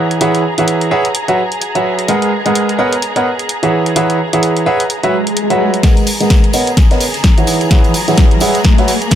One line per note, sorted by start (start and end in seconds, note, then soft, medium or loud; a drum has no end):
0.00 0.19 E3 medium
0.00 0.19 G#4 medium
0.00 5.82 G#4 medium
0.00 0.19 B4 medium
0.00 0.19 C#5 medium
0.00 0.19 E5 medium
0.00 0.19 F#5 medium
0.00 5.82 A#5 medium
0.11 closed hi-hat soft
0.21 0.42 E3 medium
0.21 0.42 G#4 medium
0.21 0.42 B4 medium
0.21 0.42 C#5 medium
0.21 0.42 E5 medium
0.21 0.42 F#5 loud
0.21 closed hi-hat medium
0.35 closed hi-hat soft
0.58 0.89 E3 medium
0.58 0.89 G#4 medium
0.58 0.89 B4 medium
0.58 0.89 C#5 medium
0.58 0.89 E5 medium
0.58 0.89 F#5 medium
0.58 closed hi-hat soft
0.68 closed hi-hat medium
0.81 closed hi-hat soft
0.91 1.06 G#4 medium
0.91 1.06 B4 medium
0.91 1.06 C#5 medium
0.91 1.06 E5 medium
0.91 1.06 F#5 loud
1.05 closed hi-hat soft
1.15 closed hi-hat medium
1.28 1.40 F#3 medium
1.28 1.40 F#4 medium
1.28 1.40 B4 medium
1.28 1.40 C#5 medium
1.28 1.40 E5 medium
1.28 1.40 F#5 medium
1.28 closed hi-hat soft
1.52 closed hi-hat soft
1.62 closed hi-hat medium
1.75 2.06 F#3 medium
1.75 2.06 F#4 medium
1.75 2.06 B4 medium
1.75 2.06 C#5 medium
1.75 2.06 E5 medium
1.75 2.06 F#5 medium
1.75 closed hi-hat soft
1.99 closed hi-hat soft
2.08 2.30 G#3 medium
2.08 2.30 G#4 medium
2.08 2.30 A#4 medium
2.08 2.30 B4 medium
2.08 2.30 D#5 medium
2.08 2.30 F#5 loud
2.08 closed hi-hat medium
2.22 closed hi-hat soft
2.46 2.76 G#3 medium
2.46 2.76 G#4 medium
2.46 2.76 A#4 medium
2.46 2.76 B4 medium
2.46 2.76 D#5 medium
2.46 2.76 F#5 medium
2.46 closed hi-hat soft
2.55 closed hi-hat medium
2.69 closed hi-hat soft
2.79 2.94 B3 medium
2.79 2.94 A#4 medium
2.79 2.94 B4 medium
2.79 2.94 C#5 medium
2.79 2.94 D#5 medium
2.79 2.93 F#5 loud
2.93 closed hi-hat medium
3.02 closed hi-hat medium
3.16 3.27 B3 medium
3.16 3.27 A#4 medium
3.16 3.27 B4 medium
3.16 3.27 C#5 medium
3.16 3.27 D#5 medium
3.16 3.27 F#5 medium
3.16 closed hi-hat soft
3.39 closed hi-hat soft
3.49 closed hi-hat medium
3.63 3.94 E3 medium
3.63 3.94 G#4 medium
3.63 3.94 B4 medium
3.63 3.94 C#5 medium
3.63 3.94 E5 medium
3.63 3.94 F#5 medium
3.63 closed hi-hat soft
3.86 closed hi-hat soft
3.96 4.17 E3 medium
3.96 4.17 G#4 medium
3.96 4.17 B4 medium
3.96 4.17 C#5 medium
3.96 4.17 E5 medium
3.96 4.17 F#5 loud
3.96 closed hi-hat medium
4.10 closed hi-hat soft
4.33 4.64 E3 medium
4.33 4.64 G#4 medium
4.33 4.64 B4 medium
4.33 4.64 C#5 medium
4.33 4.64 E5 medium
4.33 4.64 F#5 medium
4.33 closed hi-hat medium
4.43 closed hi-hat medium
4.57 closed hi-hat soft
4.66 4.81 G#4 medium
4.66 4.81 B4 medium
4.66 4.81 C#5 medium
4.66 4.81 E5 medium
4.66 4.81 F#5 loud
4.80 closed hi-hat medium
4.90 closed hi-hat medium
4.90 swell medium
5.03 5.15 F#3 medium
5.03 5.15 F#4 medium
5.03 5.15 B4 medium
5.03 5.15 C#5 medium
5.03 5.15 E5 medium
5.03 5.15 F#5 medium
5.03 closed hi-hat soft
5.27 closed hi-hat soft
5.37 closed hi-hat medium
5.50 5.81 F#3 medium
5.50 5.81 F#4 medium
5.50 5.81 B4 medium
5.50 5.81 C#5 medium
5.50 5.81 E5 medium
5.50 5.81 F#5 medium
5.50 closed hi-hat soft
5.74 closed hi-hat soft
5.83 6.05 G#3 medium
5.83 9.15 G#4 medium
5.83 6.05 G#4 medium
5.83 6.05 A#4 medium
5.83 6.05 B4 medium
5.83 9.15 A#5 medium
5.83 kick loud
5.83 snare soft
5.83 closed hi-hat medium
5.83 ride medium
5.83 tambourine medium
5.83 riser medium
5.97 closed hi-hat soft
5.97 tambourine soft
6.07 open hi-hat loud
6.07 ride medium
6.07 tambourine medium
6.20 6.51 G#3 medium
6.20 6.51 G#4 medium
6.20 6.51 A#4 medium
6.20 6.51 B4 medium
6.20 6.51 D#5 medium
6.20 6.51 F#5 medium
6.20 snare soft
6.20 closed hi-hat medium
6.20 tambourine soft
6.30 kick loud
6.30 snare loud
6.30 snare soft
6.30 closed hi-hat medium
6.30 ride medium
6.30 tambourine soft
6.44 closed hi-hat soft
6.53 6.69 B3 medium
6.53 6.69 A#4 medium
6.53 6.69 B4 medium
6.53 6.69 C#5 medium
6.53 6.69 D#5 medium
6.53 6.69 F#5 loud
6.53 open hi-hat loud
6.53 ride medium
6.53 tambourine medium
6.67 closed hi-hat medium
6.67 tambourine soft
6.77 kick loud
6.77 snare soft
6.77 closed hi-hat medium
6.77 ride medium
6.77 tambourine medium
6.91 7.02 B3 medium
6.91 7.02 A#4 medium
6.91 7.02 B4 medium
6.91 7.02 C#5 medium
6.91 7.02 D#5 medium
6.91 7.02 F#5 medium
6.91 snare soft
6.91 closed hi-hat soft
7.01 open hi-hat loud
7.01 ride medium
7.01 tambourine medium
7.14 snare soft
7.14 closed hi-hat soft
7.14 tambourine soft
7.24 kick loud
7.24 snare loud
7.24 snare soft
7.24 closed hi-hat medium
7.24 ride medium
7.24 tambourine soft
7.38 7.69 E3 medium
7.38 7.69 G#4 medium
7.38 7.69 B4 medium
7.38 7.69 C#5 medium
7.38 7.69 E5 medium
7.38 7.69 F#5 medium
7.38 closed hi-hat soft
7.38 tambourine soft
7.47 open hi-hat medium
7.47 ride medium
7.47 tambourine medium
7.61 closed hi-hat soft
7.61 tambourine soft
7.71 7.92 E3 medium
7.71 7.92 G#4 medium
7.71 7.92 B4 medium
7.71 7.92 C#5 medium
7.71 7.92 E5 medium
7.71 7.92 F#5 loud
7.71 kick loud
7.71 snare medium
7.71 closed hi-hat medium
7.71 ride medium
7.71 tambourine soft
7.84 closed hi-hat soft
7.84 tambourine soft
7.94 open hi-hat loud
7.94 ride medium
7.94 tambourine medium
8.08 8.39 E3 medium
8.08 8.39 G#4 medium
8.08 8.39 B4 medium
8.08 8.39 C#5 medium
8.08 8.39 E5 medium
8.08 8.39 F#5 medium
8.08 snare medium
8.08 closed hi-hat soft
8.08 tambourine soft
8.17 kick loud
8.17 snare medium
8.17 snare loud
8.17 closed hi-hat medium
8.17 ride medium
8.17 tambourine medium
8.31 closed hi-hat soft
8.40 8.56 G#4 loud
8.40 8.56 B4 medium
8.40 8.56 C#5 medium
8.40 8.56 E5 medium
8.40 8.56 F#5 loud
8.40 open hi-hat loud
8.40 ride medium
8.40 tambourine medium
8.55 snare soft
8.55 closed hi-hat soft
8.55 tambourine soft
8.64 kick loud
8.64 snare medium
8.64 closed hi-hat medium
8.64 ride medium
8.64 tambourine soft
8.78 8.90 F#3 medium
8.78 8.90 F#4 medium
8.78 8.90 B4 medium
8.78 8.90 C#5 medium
8.78 8.90 E5 medium
8.78 8.90 F#5 medium
8.78 snare soft
8.78 closed hi-hat soft
8.88 open hi-hat loud
8.88 ride medium
8.88 tambourine medium
9.02 closed hi-hat soft
9.02 tambourine soft
9.11 kick loud
9.11 snare loud
9.11 snare medium
9.11 closed hi-hat medium
9.11 ride medium
9.11 tambourine soft